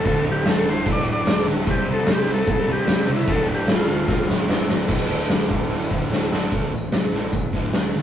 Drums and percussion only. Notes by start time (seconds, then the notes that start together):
0.05 kick, crash
0.45 snare, crash
0.85 kick, crash
1.27 snare, crash
1.67 kick, crash
2.07 snare, crash
2.47 kick, crash
2.87 snare, crash
3.27 kick, crash
3.68 snare, crash
4.08 kick, snare
4.29 snare
4.49 snare
4.69 snare
4.89 kick, crash
5.08 open hi-hat
5.29 snare, open hi-hat
5.50 kick, open hi-hat
5.71 open hi-hat
5.91 kick, open hi-hat
6.12 snare
6.32 snare
6.52 kick, closed hi-hat
6.72 closed hi-hat
6.92 snare, closed hi-hat
7.13 closed hi-hat
7.32 kick, closed hi-hat
7.52 kick, closed hi-hat
7.73 snare, closed hi-hat
7.94 closed hi-hat